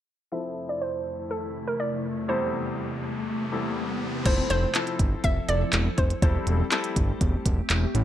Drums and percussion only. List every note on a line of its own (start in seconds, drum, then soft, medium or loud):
4.26 kick loud
4.26 closed hi-hat medium
4.26 crash loud
4.50 closed hi-hat medium
4.75 clap loud
4.75 closed hi-hat medium
4.87 closed hi-hat medium
4.99 kick loud
4.99 closed hi-hat medium
5.24 kick medium
5.24 closed hi-hat medium
5.49 closed hi-hat medium
5.73 clap loud
5.73 closed hi-hat medium
5.98 kick medium
5.98 closed hi-hat medium
6.10 closed hi-hat medium
6.22 kick loud
6.22 closed hi-hat medium
6.47 closed hi-hat medium
6.72 clap loud
6.72 closed hi-hat medium
6.84 closed hi-hat medium
6.96 kick loud
6.96 closed hi-hat medium
7.21 kick medium
7.21 closed hi-hat medium
7.46 kick medium
7.46 closed hi-hat medium
7.70 clap loud
7.70 closed hi-hat medium
7.95 closed hi-hat medium